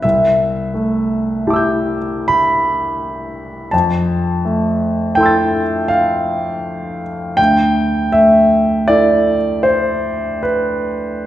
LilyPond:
\new Staff \with { instrumentName = "Grand piano" } { \time 5/4 \key d \mixolydian \tempo 4 = 81 << { c,4 a4 <e' g' a'' d''' e''' g'''>2. | f,4 a4 <e' a' a'' c''' e''' a'''>2. | d,4 a4 <e' a'>2. | } \\ { e''2. b''2 | a''2 g''4 f''4. r8 | g''4 e''4 d''4 c''4 b'4 | } >> }